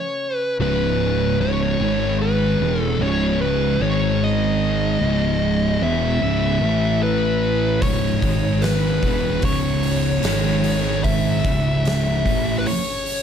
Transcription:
0.00 1.77 C#3 medium
0.00 6.59 C#4 medium
0.00 0.35 C#5 loud
0.35 0.56 B4 loud
0.59 1.36 C#1 medium
0.59 1.39 C#2 loud
0.59 1.39 G#2 loud
0.59 1.40 C#3 medium
0.59 1.37 B4 loud
1.40 1.77 C#1 medium
1.40 1.79 C#2 medium
1.40 1.79 G#2 medium
1.40 1.80 C#3 medium
1.40 2.17 C#5 loud
1.80 2.56 G#1 loud
1.80 2.59 G#2 medium
1.80 2.60 D#3 loud
1.80 2.60 G#3 loud
1.80 2.59 G#4 medium
2.22 2.82 B4 medium
2.60 2.97 E1 medium
2.60 2.99 E2 loud
2.60 3.00 B2 loud
2.60 3.80 C#3 medium
2.60 3.00 E3 medium
2.60 6.58 G#3 medium
2.82 3.02 A4 medium
2.99 3.76 C#1 medium
2.99 3.79 C#2 loud
2.99 3.79 G#2 loud
2.99 3.80 C#3 loud
2.99 3.41 C#5 medium
3.41 3.82 B4 medium
3.80 4.97 G#1 medium
3.80 5.00 G#2 medium
3.80 5.00 D#3 loud
3.80 5.00 G#3 medium
3.80 5.00 G#4 medium
3.80 4.23 C#5 medium
4.24 5.82 D#5 loud
5.01 5.77 C#1 loud
5.01 5.80 C#2 medium
5.01 5.81 G#2 medium
5.01 6.60 C#3 medium
5.01 5.81 C#3 loud
5.81 6.19 E1 medium
5.81 6.20 E2 medium
5.81 6.21 B2 medium
5.81 6.21 E3 medium
5.81 6.99 E5 loud
6.22 6.60 C#1 medium
6.22 6.61 C#2 loud
6.22 6.61 G#2 loud
6.22 6.61 C#3 loud
6.60 7.79 A1 medium
6.60 7.82 A2 medium
6.60 7.82 E3 medium
6.60 7.81 A3 medium
6.60 7.81 E4 medium
6.60 7.80 B4 medium
6.64 7.82 A3 medium
7.03 7.82 B4 medium
7.80 8.20 C#1 loud
7.80 8.21 C#2 medium
7.80 8.21 G#2 loud
7.80 8.21 C#3 medium
7.80 8.22 C#3 loud
7.80 9.02 D#4 medium
7.80 8.62 C#5 loud
7.80 kick loud
7.80 open hi-hat medium
8.21 8.99 G#1 loud
8.21 9.02 G#2 loud
8.21 9.02 D#3 medium
8.21 9.03 G#3 loud
8.21 9.02 G#4 medium
8.21 kick loud
8.21 open hi-hat medium
8.62 9.44 B4 medium
8.62 snare loud
8.62 open hi-hat medium
9.02 9.40 E1 medium
9.02 9.42 E2 medium
9.02 9.43 B2 medium
9.02 10.22 C#3 medium
9.02 9.43 E3 medium
9.02 13.23 C#4 medium
9.02 kick loud
9.02 open hi-hat medium
9.42 10.20 C#1 loud
9.42 10.22 C#2 medium
9.42 10.22 G#2 loud
9.42 10.24 C#3 loud
9.42 11.01 C#5 medium
9.42 kick loud
9.42 open hi-hat medium
9.83 open hi-hat medium
10.22 11.41 G#1 medium
10.22 11.43 G#2 medium
10.22 11.44 D#3 loud
10.22 11.44 G#3 medium
10.22 11.44 G#4 medium
10.22 snare loud
10.22 open hi-hat medium
10.64 open hi-hat medium
11.04 12.54 E5 loud
11.04 kick loud
11.04 open hi-hat medium
11.44 12.21 C#1 loud
11.44 12.24 C#2 medium
11.44 12.25 G#2 medium
11.44 13.23 C#3 medium
11.44 12.25 C#3 loud
11.44 kick loud
11.44 open hi-hat medium
11.85 snare loud
11.85 open hi-hat medium
12.25 12.63 A1 medium
12.25 12.65 A2 medium
12.25 12.65 E3 medium
12.25 12.66 A3 loud
12.25 kick loud
12.25 open hi-hat medium
12.58 12.66 B4 medium
12.66 13.23 C#5 medium
12.66 open hi-hat medium
13.06 open hi-hat medium

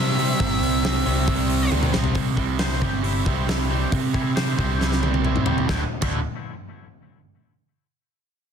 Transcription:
0.00 0.18 C3 medium
0.00 0.33 C3 medium
0.00 0.18 G3 loud
0.00 2.11 G3 medium
0.00 0.19 C4 loud
0.00 2.13 C4 medium
0.00 2.14 E4 medium
0.00 2.13 C5 medium
0.00 1.70 E5 loud
0.18 0.38 C3 medium
0.18 0.38 G3 medium
0.18 0.39 C4 loud
0.18 open hi-hat medium
0.40 0.60 G1 loud
0.40 0.82 C3 loud
0.40 0.82 G3 loud
0.40 0.82 C4 loud
0.40 kick loud
0.40 open hi-hat medium
0.63 1.00 C2 loud
0.63 open hi-hat medium
0.83 1.04 C3 medium
0.83 1.05 G3 medium
0.83 1.04 C4 medium
0.83 snare loud
0.83 open hi-hat medium
1.05 1.25 C2 medium
1.05 1.26 C3 medium
1.05 1.26 G3 medium
1.05 1.27 C4 loud
1.05 open hi-hat medium
1.27 1.66 C2 loud
1.27 1.69 C3 medium
1.27 1.69 G3 medium
1.27 1.70 C4 loud
1.27 kick loud
1.27 open hi-hat medium
1.50 open hi-hat medium
1.70 1.92 D2 medium
1.70 1.91 C3 medium
1.70 1.91 G3 loud
1.70 1.92 C4 loud
1.70 high tom medium
1.83 mid tom medium
1.92 2.14 C2 medium
1.92 2.13 C3 medium
1.92 2.13 G3 medium
1.92 2.14 C4 loud
1.92 snare loud
2.04 floor tom medium
2.14 2.35 C2 medium
2.14 2.35 C3 medium
2.14 3.26 C3 medium
2.14 2.36 G3 loud
2.14 2.36 C4 loud
2.14 kick loud
2.14 open hi-hat medium
2.36 2.84 C2 medium
2.36 2.58 C3 medium
2.36 2.59 G3 medium
2.36 2.59 C4 medium
2.36 3.04 E4 medium
2.36 kick medium
2.59 2.80 C3 medium
2.59 2.81 G3 medium
2.59 2.81 C4 medium
2.59 4.36 C5 medium
2.59 snare loud
2.59 open hi-hat medium
2.80 3.20 G1 medium
2.80 3.01 C3 medium
2.80 3.02 G3 medium
2.80 3.03 C4 medium
2.80 3.69 G4 medium
2.80 kick medium
3.03 3.24 C3 medium
3.03 3.25 G3 medium
3.03 3.26 C4 medium
3.03 3.47 E4 medium
3.03 open hi-hat medium
3.25 3.84 C2 medium
3.25 3.45 C3 medium
3.25 3.46 G3 medium
3.25 3.47 C4 medium
3.25 4.37 C4 medium
3.25 kick medium
3.46 3.68 C3 medium
3.46 3.68 G3 medium
3.46 3.69 C4 medium
3.46 4.13 E4 medium
3.46 snare loud
3.46 open hi-hat medium
3.69 3.90 C3 medium
3.69 3.91 G3 medium
3.69 3.91 C4 loud
3.69 4.56 G4 medium
3.91 4.12 C3 medium
3.91 5.02 C3 medium
3.91 4.12 C3 medium
3.91 4.13 G3 medium
3.91 4.13 C4 loud
3.91 kick loud
3.91 open hi-hat medium
4.14 4.34 C3 medium
4.14 4.53 C3 loud
4.14 4.33 G3 medium
4.14 4.34 C4 medium
4.14 4.79 E4 medium
4.14 kick medium
4.35 4.55 C3 medium
4.35 4.56 G3 medium
4.35 4.56 C4 medium
4.35 5.47 C5 medium
4.35 snare loud
4.35 open hi-hat medium
4.57 5.36 C2 loud
4.57 4.78 C3 medium
4.57 4.78 G3 medium
4.57 4.78 C4 loud
4.57 5.45 G4 medium
4.57 kick medium
4.79 5.01 C3 loud
4.79 5.01 G3 medium
4.79 5.01 C4 loud
4.79 5.24 E4 medium
4.79 snare medium
4.92 snare medium
5.02 5.23 C3 medium
5.02 5.24 G3 medium
5.02 5.24 C4 loud
5.02 5.68 C4 medium
5.02 high tom medium
5.14 high tom medium
5.24 5.46 C3 medium
5.24 5.46 G3 medium
5.24 5.46 C4 medium
5.24 5.69 E4 medium
5.24 mid tom medium
5.36 mid tom medium
5.46 5.68 C3 medium
5.46 5.68 G3 medium
5.46 5.68 C4 loud
5.46 5.69 G4 medium
5.46 floor tom loud
5.58 floor tom medium
5.68 5.82 D1 medium
5.68 5.82 D2 medium
5.68 5.82 A2 medium
5.68 5.82 A2 loud
5.68 5.82 D3 loud
5.68 5.83 D3 loud
5.68 5.82 A3 loud
5.68 5.83 C4 medium
5.68 5.83 E4 loud
5.68 kick loud
5.68 snare medium
6.01 6.23 D1 medium
6.01 6.19 D2 medium
6.01 6.20 A2 medium
6.01 6.20 D3 medium
6.01 6.20 D3 loud
6.01 6.20 A3 loud
6.01 6.20 C4 loud
6.01 6.20 E4 loud
6.01 kick loud
6.01 crash medium

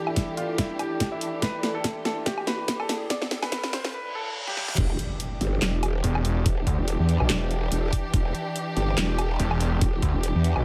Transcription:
0.00 3.90 E3 medium
0.00 3.90 D4 medium
0.00 3.94 E4 medium
0.00 3.90 G4 medium
0.00 3.94 A4 medium
0.00 3.94 D5 medium
0.00 3.94 G5 medium
0.00 riser medium
0.07 0.33 E4 medium
0.07 low woodblock medium
0.16 kick medium
0.16 snare medium
0.16 closed hi-hat medium
0.37 0.55 F4 medium
0.37 closed hi-hat medium
0.58 0.76 E4 medium
0.58 kick loud
0.58 snare medium
0.58 closed hi-hat medium
0.79 1.06 G4 medium
0.79 closed hi-hat medium
0.79 low woodblock soft
1.00 kick medium
1.00 snare medium
1.00 closed hi-hat medium
1.12 1.38 E4 medium
1.21 open hi-hat medium
1.42 1.69 B4 medium
1.42 kick loud
1.42 snare medium
1.42 closed hi-hat medium
1.63 snare medium
1.63 closed hi-hat soft
1.75 2.01 A4 medium
1.84 kick loud
1.84 snare medium
1.84 closed hi-hat medium
2.05 2.23 A4 medium
2.05 snare medium
2.05 closed hi-hat medium
2.26 2.44 G4 medium
2.26 kick loud
2.26 snare medium
2.26 closed hi-hat medium
2.38 low woodblock medium
2.47 2.74 B4 medium
2.47 snare medium
2.47 closed hi-hat medium
2.68 kick loud
2.68 snare medium
2.68 closed hi-hat medium
2.80 3.06 A4 medium
2.80 low woodblock medium
2.89 snare medium
2.89 open hi-hat medium
3.10 3.37 D5 medium
3.10 kick loud
3.10 snare medium
3.10 closed hi-hat medium
3.22 snare medium
3.31 snare medium
3.31 closed hi-hat soft
3.43 3.69 B4 medium
3.43 snare medium
3.43 low woodblock medium
3.52 kick loud
3.52 snare medium
3.52 closed hi-hat medium
3.64 snare medium
3.73 3.91 C5 medium
3.73 snare loud
3.73 closed hi-hat medium
3.84 snare medium
3.94 4.12 B4 medium
3.94 reverse cymbal medium
4.15 4.42 A4 medium
4.47 4.73 G4 loud
4.47 snare medium
4.57 snare medium
4.68 snare medium
4.78 4.97 E1 loud
4.78 10.65 E3 medium
4.78 10.65 D4 medium
4.78 10.65 G4 medium
4.78 kick loud
4.78 closed hi-hat medium
4.78 crash loud
4.78 impact medium
4.99 closed hi-hat medium
5.20 closed hi-hat medium
5.41 5.60 G1 loud
5.41 open hi-hat medium
5.62 6.02 E1 loud
5.62 snare loud
5.62 clap loud
5.62 closed hi-hat medium
5.83 closed hi-hat medium
5.83 low woodblock medium
6.04 6.44 E1 loud
6.04 closed hi-hat medium
6.15 low woodblock medium
6.25 open hi-hat medium
6.46 6.65 E1 loud
6.46 kick loud
6.46 closed hi-hat medium
6.67 6.76 D2 medium
6.67 kick medium
6.67 closed hi-hat medium
6.78 6.97 E1 loud
6.88 closed hi-hat medium
6.99 7.18 E2 loud
7.09 open hi-hat medium
7.20 7.28 B1 loud
7.20 low woodblock medium
7.30 7.70 E1 loud
7.30 snare loud
7.30 clap loud
7.30 closed hi-hat medium
7.51 closed hi-hat medium
7.72 7.91 E1 medium
7.72 closed hi-hat medium
7.93 kick medium
7.93 open hi-hat medium
8.14 8.33 E1 medium
8.14 kick loud
8.14 closed hi-hat medium
8.35 closed hi-hat medium
8.56 closed hi-hat medium
8.77 8.96 G1 medium
8.77 open hi-hat medium
8.98 9.38 E1 loud
8.98 snare loud
8.98 clap medium
8.98 closed hi-hat medium
9.19 closed hi-hat medium
9.19 low woodblock medium
9.40 9.80 E1 loud
9.40 closed hi-hat medium
9.51 low woodblock medium
9.61 open hi-hat medium
9.81 10.01 E1 loud
9.81 kick loud
9.81 closed hi-hat medium
10.02 10.12 D2 loud
10.02 kick medium
10.02 closed hi-hat medium
10.14 10.33 E1 loud
10.23 closed hi-hat medium
10.35 10.54 E2 loud
10.44 open hi-hat medium
10.56 10.64 B1 loud
10.56 low woodblock medium

